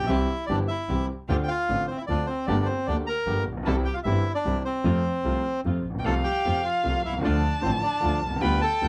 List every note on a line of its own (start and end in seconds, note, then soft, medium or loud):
0.00 0.09 B1 medium
0.00 0.10 G5 medium
0.07 0.25 C2 medium
0.07 0.26 C2 medium
0.07 0.26 C3 medium
0.07 0.26 E3 medium
0.07 0.26 G3 medium
0.07 0.25 C4 medium
0.07 0.26 C4 medium
0.07 0.26 E4 medium
0.07 0.46 E4 medium
0.07 0.26 G4 medium
0.07 0.45 E5 medium
0.47 0.65 G1 medium
0.47 0.66 G1 medium
0.47 0.66 G2 soft
0.47 0.66 E3 soft
0.47 0.66 G3 soft
0.47 0.66 C4 soft
0.47 0.59 D4 medium
0.47 0.66 E4 soft
0.47 0.66 G4 soft
0.47 0.56 D5 medium
0.68 1.07 E4 medium
0.68 1.06 E5 medium
0.88 1.06 C2 medium
0.88 1.06 C2 soft
0.88 1.06 C3 soft
0.88 1.06 E3 soft
0.88 1.06 G3 soft
0.88 1.06 C4 soft
0.88 1.06 E4 soft
0.88 1.06 G4 soft
0.88 1.07 G4 soft
1.29 1.46 D2 medium
1.29 1.46 D3 medium
1.29 1.46 A3 medium
1.29 1.46 C4 medium
1.29 1.46 D4 medium
1.29 1.46 F4 medium
1.29 1.37 G4 medium
1.29 1.35 G5 medium
1.43 1.50 G5 medium
1.48 1.87 F4 medium
1.48 1.85 F5 medium
1.68 1.86 A1 medium
1.68 1.86 A1 soft
1.68 1.86 A2 soft
1.68 1.86 D3 soft
1.68 1.86 A3 soft
1.68 1.85 C4 soft
1.68 1.86 C4 soft
1.68 1.86 D4 soft
1.68 1.86 F4 soft
1.87 1.99 C4 soft
1.87 1.97 C5 medium
1.98 2.05 E4 medium
1.98 2.02 E5 medium
2.07 2.25 D2 soft
2.07 2.25 D2 medium
2.07 2.25 D3 soft
2.07 2.25 A3 soft
2.07 2.25 C4 soft
2.07 2.26 C4 soft
2.07 2.26 D4 soft
2.07 2.28 D4 medium
2.07 2.25 F4 soft
2.07 2.26 F4 soft
2.07 2.26 D5 medium
2.27 2.47 C4 soft
2.27 2.46 C5 medium
2.47 2.65 G1 medium
2.47 2.65 G2 medium
2.47 2.65 D3 medium
2.47 2.65 A3 medium
2.47 2.65 A#3 medium
2.47 2.67 D4 medium
2.47 2.65 G4 medium
2.47 2.68 D5 medium
2.66 2.87 C4 medium
2.66 2.87 C5 medium
2.86 3.04 D2 medium
2.86 3.05 D2 medium
2.86 3.05 D3 medium
2.86 3.04 A3 soft
2.86 3.04 A#3 soft
2.86 3.05 A#3 soft
2.86 2.97 D4 medium
2.86 3.04 G4 medium
2.86 3.05 G4 soft
2.86 2.95 D5 medium
3.06 3.45 A#4 medium
3.06 3.43 A#5 medium
3.26 3.43 G1 medium
3.26 3.43 G2 soft
3.26 3.43 D3 soft
3.26 3.43 A3 soft
3.26 3.43 A#3 soft
3.26 3.43 G4 soft
3.26 3.43 G4 medium
3.46 3.65 A#1 medium
3.52 3.57 A1 soft
3.57 3.62 A#1 medium
3.63 3.67 B1 medium
3.63 3.82 C2 medium
3.63 3.83 E3 medium
3.63 3.82 G3 medium
3.63 3.83 C4 medium
3.63 3.83 E4 medium
3.63 3.74 A5 medium
3.67 3.83 C2 medium
3.67 3.83 C3 medium
3.67 3.83 G3 medium
3.67 3.83 C4 medium
3.67 3.83 G4 medium
3.67 3.76 A4 medium
3.85 3.95 G4 medium
3.85 3.94 G5 medium
3.94 4.00 F4 medium
3.94 3.99 F5 medium
4.04 4.22 G1 medium
4.04 4.22 G2 medium
4.04 4.22 E3 soft
4.04 4.22 G3 medium
4.04 4.22 G3 soft
4.04 4.22 C4 soft
4.04 4.33 E4 medium
4.04 4.22 E4 medium
4.04 4.22 G4 soft
4.04 4.32 E5 medium
4.35 4.63 D4 medium
4.35 4.62 D5 medium
4.45 4.62 C2 medium
4.45 4.62 C3 medium
4.45 4.62 E3 soft
4.45 4.62 G3 soft
4.45 4.62 C4 soft
4.45 4.62 E4 soft
4.45 4.62 G4 soft
4.65 5.61 C4 soft
4.65 5.60 C5 medium
4.84 5.01 F2 medium
4.84 5.01 C3 medium
4.84 5.01 F3 medium
4.84 5.01 A3 medium
4.84 5.02 C4 medium
4.84 5.01 F4 medium
4.84 5.02 F4 medium
5.24 5.41 C2 medium
5.24 5.41 C3 medium
5.24 5.41 F3 soft
5.24 5.41 A3 soft
5.24 5.42 A3 soft
5.24 5.42 C4 soft
5.24 5.41 F4 medium
5.24 5.42 F4 medium
5.64 5.81 F2 medium
5.64 5.82 F2 soft
5.64 5.81 C3 soft
5.64 5.82 F3 soft
5.64 5.82 A3 soft
5.64 5.82 C4 soft
5.64 5.82 F4 soft
5.84 6.04 A#1 soft
5.90 5.95 A1 soft
5.95 6.00 A#1 soft
5.95 6.06 G5 medium
5.99 6.04 B1 medium
6.04 6.21 C2 medium
6.04 6.22 C2 medium
6.04 6.22 C3 medium
6.04 6.21 F3 medium
6.04 6.21 A3 medium
6.04 6.22 A3 medium
6.04 6.22 C4 medium
6.04 6.22 F4 medium
6.04 6.15 A4 medium
6.04 7.22 F5 medium
6.04 6.14 A5 medium
6.24 6.62 G4 medium
6.24 6.65 G5 medium
6.45 6.62 F2 medium
6.45 6.61 C3 soft
6.45 6.62 F3 medium
6.45 6.62 A3 soft
6.45 6.62 C4 soft
6.45 6.62 F4 medium
6.45 6.62 F4 soft
6.64 7.02 F4 medium
6.64 7.01 F5 medium
6.83 7.01 C2 medium
6.83 7.02 C2 medium
6.83 7.01 C3 soft
6.83 7.01 F3 soft
6.83 7.01 A3 soft
6.83 7.02 A3 soft
6.83 7.02 C4 soft
6.83 7.01 F4 soft
6.83 7.02 F4 soft
7.05 7.14 B1 soft
7.05 7.25 C2 medium
7.05 7.14 E4 medium
7.05 7.14 E5 medium
7.13 7.19 C2 medium
7.18 7.24 C#2 medium
7.18 7.39 D2 medium
7.18 7.40 D3 medium
7.18 7.39 F3 medium
7.18 7.40 A3 medium
7.22 7.42 D2 medium
7.22 7.41 A3 medium
7.22 7.41 D4 medium
7.22 7.62 D4 medium
7.22 7.40 F4 medium
7.22 7.41 F4 medium
7.22 7.61 D5 medium
7.22 8.43 A5 medium
7.61 7.79 A1 soft
7.61 7.81 A1 medium
7.61 7.79 A2 medium
7.61 7.79 D3 soft
7.61 7.79 F3 soft
7.61 7.79 A3 soft
7.61 7.80 A3 soft
7.61 7.73 C4 medium
7.61 7.81 D4 soft
7.61 7.79 F4 soft
7.61 7.81 F4 medium
7.61 7.72 C5 medium
7.83 8.20 D4 medium
7.83 8.20 D5 medium
8.00 8.18 D2 soft
8.00 8.20 D2 medium
8.00 8.19 D3 soft
8.00 8.18 F3 soft
8.00 8.18 A3 soft
8.00 8.19 A3 soft
8.00 8.20 D4 soft
8.00 8.18 F4 medium
8.00 8.20 F4 soft
8.24 8.32 B1 soft
8.24 8.41 C2 soft
8.31 8.36 C2 medium
8.36 8.42 C#2 medium
8.40 8.58 D2 medium
8.40 8.59 D2 medium
8.40 8.58 D3 medium
8.40 8.58 G3 medium
8.40 8.59 G3 medium
8.40 8.58 B3 medium
8.40 8.59 B3 medium
8.40 8.58 F4 medium
8.40 8.59 F4 medium
8.40 8.62 B4 medium
8.40 8.88 G5 medium
8.40 8.60 B5 medium
8.61 8.88 A4 medium
8.61 8.88 A5 loud
8.81 8.88 D2 medium
8.81 8.88 D3 soft
8.81 8.88 G3 soft
8.81 8.88 B3 soft
8.81 8.88 F4 medium